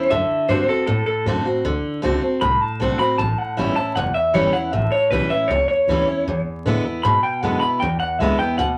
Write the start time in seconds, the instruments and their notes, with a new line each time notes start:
Already playing: steel-string acoustic guitar C#4, clean electric guitar C5
0.10 upright bass F#2, steel-string acoustic guitar D3, clean electric guitar E5
0.29 muted upright bass stroke
0.48 upright bass G2, steel-string acoustic guitar D3 A3 C4 F#4, clean electric guitar C5
0.68 steel-string acoustic guitar C4 F#4, clean electric guitar A4, muted upright bass stroke
0.86 steel-string acoustic guitar A2, upright bass A2, clean electric guitar A4
1.06 clean electric guitar A4, muted upright bass stroke
1.26 upright bass F#2, steel-string acoustic guitar D3 A3 C4 F#4
1.45 steel-string acoustic guitar C4 F#4, muted upright bass stroke
1.64 upright bass D2, steel-string acoustic guitar D3
1.83 muted upright bass stroke
2.02 upright bass C#2, steel-string acoustic guitar D3 A3 C4 F#4
2.21 steel-string acoustic guitar C4 F#4, muted upright bass stroke
2.41 upright bass C2, steel-string acoustic guitar A2, clean electric guitar B5
2.61 clean electric guitar A5, muted upright bass stroke
2.80 upright bass B1, steel-string acoustic guitar D3 A3 C4 F#4, clean electric guitar F#5
2.98 steel-string acoustic guitar C4 F#4, clean electric guitar B5
3.18 upright bass A1, steel-string acoustic guitar A2, clean electric guitar A5
3.38 clean electric guitar F#5, muted upright bass stroke
3.57 upright bass G1, steel-string acoustic guitar E3 G3 C#4 E4, clean electric guitar E5
3.76 steel-string acoustic guitar C#4 E4, clean electric guitar A5, muted upright bass stroke
3.95 upright bass F#1, steel-string acoustic guitar E2, clean electric guitar F#5
4.14 clean electric guitar E5, muted upright bass stroke
4.33 upright bass G1, steel-string acoustic guitar E3 G3 C#4 E4, clean electric guitar C#5
4.53 steel-string acoustic guitar C#4 E4, clean electric guitar F#5, muted upright bass stroke
4.72 upright bass A1, steel-string acoustic guitar A2, clean electric guitar E5
4.91 clean electric guitar C#5, muted upright bass stroke
5.10 upright bass B1, steel-string acoustic guitar E3 G3 C#4 E4, clean electric guitar B4
5.30 steel-string acoustic guitar C#4 E4, clean electric guitar E5, muted upright bass stroke
5.48 upright bass C#2, steel-string acoustic guitar E2, clean electric guitar C#5
5.68 clean electric guitar C#5, muted upright bass stroke
5.87 upright bass D2, steel-string acoustic guitar E3 G3 C#4 E4
6.07 steel-string acoustic guitar C#4 E4, muted upright bass stroke
6.27 upright bass E2, steel-string acoustic guitar E2
6.46 muted upright bass stroke
6.65 upright bass A2, steel-string acoustic guitar D3 G#3 B3 E4
6.85 steel-string acoustic guitar B3 E4
7.03 upright bass G#2, steel-string acoustic guitar B2, clean electric guitar B5
7.23 clean electric guitar G5, muted upright bass stroke
7.41 upright bass F#2, steel-string acoustic guitar D3 G#3 B3 E4, clean electric guitar F#5
7.60 steel-string acoustic guitar E4, clean electric guitar B5, muted upright bass stroke
7.64 steel-string acoustic guitar B3
7.80 upright bass E2, steel-string acoustic guitar E2, clean electric guitar G5
8.00 clean electric guitar F#5, muted upright bass stroke
8.19 upright bass C#2, steel-string acoustic guitar D3 G#3 B3 E4, clean electric guitar E5
8.39 steel-string acoustic guitar B3 E4, clean electric guitar G5, muted upright bass stroke
8.58 upright bass D2, steel-string acoustic guitar B2, clean electric guitar F#5